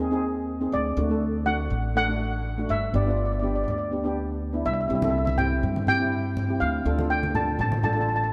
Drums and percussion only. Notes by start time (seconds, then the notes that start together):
5.02 high conga
5.27 high conga
5.39 low conga
5.63 low conga
5.76 high conga
5.87 low conga
6.37 low conga
6.99 high conga
7.23 high conga
7.35 low conga
7.59 low conga
7.72 high conga
7.83 low conga